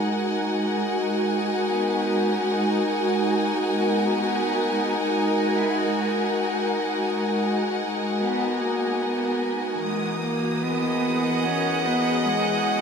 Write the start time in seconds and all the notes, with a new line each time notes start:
Already playing: G#3 D#4 F#4 A#4 F#5 G#5
0.50 G#3
1.70 B3
2.30 C#4
2.50 D#4
3.72 B3
4.95 D#4
5.57 E4
5.77 F#4
7.01 G#3
8.21 B3
8.60 A#3
9.01 B3
9.83 E3 G#3 D#6
10.23 A#3
10.61 B3 D#5
10.70 G#4
10.95 F#5
11.45 C#4
11.85 B3
12.25 G#3